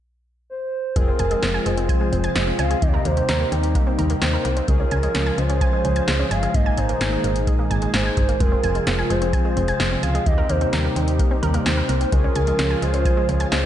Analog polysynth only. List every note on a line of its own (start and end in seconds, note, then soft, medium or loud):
0.96 2.78 C4 medium
0.96 2.78 F4 medium
0.96 2.78 G#4 medium
2.82 4.65 C4 medium
2.82 4.65 D#4 medium
2.82 4.65 G4 medium
4.68 6.51 C#4 medium
4.68 6.51 F4 medium
4.68 6.51 G#4 medium
6.54 8.37 A#3 medium
6.54 8.37 D#4 medium
6.54 8.37 G#4 medium
8.40 10.23 C4 medium
8.40 10.23 F4 medium
8.40 10.23 G#4 medium
10.26 12.09 C4 medium
10.26 12.09 D#4 medium
10.26 12.09 G4 medium
12.13 13.66 C#4 medium
12.13 13.66 F4 medium
12.13 13.66 G#4 medium